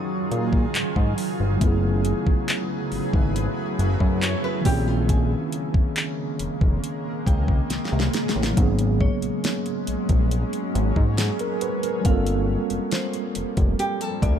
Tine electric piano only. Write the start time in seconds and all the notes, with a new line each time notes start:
Already playing: F#3 C#4 D#4 F4 G#4
1.57 F#3 A3
1.62 B3 E4
1.67 G#4
4.61 D#3 A#3
4.66 C4 C#4
4.71 G#4
8.53 F#3 A#3
8.58 B3 C#4
8.63 G#4
11.19 G#4
11.41 A#4
11.62 B4
11.84 A#4
12.01 G3 A3
12.06 C4 F4
12.10 A#3 A4